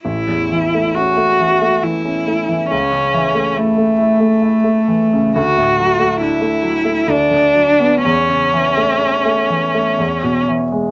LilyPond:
<<
  \new Staff \with { instrumentName = "Cello" } { \time 3/4 \key a \major \tempo 4 = 67 e'4 fis'4 e'4 | cis'4 a2 | fis'4 e'4 d'4 | cis'2~ cis'8 r8 | }
  \new Staff \with { instrumentName = "Grand piano" } { \clef bass \time 3/4 \key a \major a,,16 e,16 e16 a16 cis'16 a16 e16 a16 e16 cis'16 a16 e16 | cis,16 cis16 e16 a16 e'16 a16 e'16 a16 e'16 a16 e16 cis16 | d,16 a,16 fis16 a16 d'16 a16 fis16 a16 d,16 d16 fis16 b16 | e,16 cis16 e16 a16 cis'16 a16 e16 a16 e,16 b,16 e16 gis16 | }
>>